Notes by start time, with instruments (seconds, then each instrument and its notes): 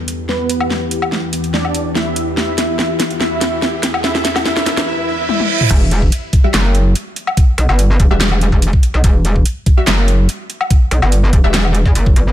Already playing: ambient pad E2 E3 B3 G4, riser
0.08 closed hi-hat
0.29 supersaw synth B3 B4, snare
0.50 closed hi-hat
0.60 low woodblock
0.70 snare
0.91 closed hi-hat
1.02 low woodblock
1.12 snare
1.33 closed hi-hat
1.44 closed hi-hat
1.54 supersaw synth D4 D5, snare
1.65 low woodblock
1.75 closed hi-hat
1.95 supersaw synth E4 E5, snare
2.16 closed hi-hat
2.37 supersaw synth E4 E5, snare
2.58 snare, closed hi-hat
2.79 snare
3.00 snare, closed hi-hat
3.11 closed hi-hat
3.20 supersaw synth E4 E5, snare
3.41 snare, closed hi-hat
3.62 snare
3.83 snare, closed hi-hat
3.94 low woodblock
4.04 supersaw synth E4 E5, snare
4.15 snare
4.25 snare, closed hi-hat
4.36 snare, low woodblock
4.45 supersaw synth E4 E5, snare
4.57 snare
4.66 snare, closed hi-hat
4.77 snare, closed hi-hat
4.87 supersaw synth E4 E5, reverse cymbal
5.08 supersaw synth E4 E5
5.29 supersaw synth E4 E5, high tom
5.40 high tom
5.50 supersaw synth E4 E5
5.61 mid tom
5.70 wobble bass E1, kick, closed hi-hat, crash
5.91 closed hi-hat
6.02 kick
6.12 closed hi-hat
6.33 kick, closed hi-hat
6.44 synth stab G3 F#4 E5
6.54 wobble bass F#1, snare, clap, closed hi-hat
6.75 closed hi-hat
6.95 closed hi-hat
7.16 closed hi-hat
7.27 low woodblock
7.37 kick, closed hi-hat
7.58 wobble bass B1, closed hi-hat
7.69 wobble bass G1, low woodblock
7.79 closed hi-hat
8.00 wobble bass E1, kick, closed hi-hat
8.11 wobble bass E1, synth stab G3 F#4 E5
8.21 snare, clap, closed hi-hat
8.32 low woodblock
8.41 closed hi-hat
8.52 wobble bass E1, kick
8.62 closed hi-hat
8.73 kick
8.83 closed hi-hat
8.94 wobble bass B1
9.04 wobble bass E1, kick, closed hi-hat
9.25 closed hi-hat
9.36 kick
9.45 closed hi-hat
9.66 kick, closed hi-hat
9.77 synth stab G3 F#4 E5
9.87 wobble bass F#1, snare, clap, closed hi-hat
10.08 closed hi-hat
10.29 closed hi-hat
10.50 closed hi-hat
10.61 low woodblock
10.70 kick, closed hi-hat
10.91 wobble bass B1, closed hi-hat
11.02 wobble bass G1, low woodblock
11.12 closed hi-hat
11.33 wobble bass E1, kick, closed hi-hat
11.44 wobble bass E1, synth stab G3 F#4 E5
11.54 snare, clap, closed hi-hat
11.65 low woodblock
11.75 closed hi-hat
11.86 wobble bass E2, kick
11.95 wobble bass F#1, closed hi-hat
12.06 kick
12.16 wobble bass G1, closed hi-hat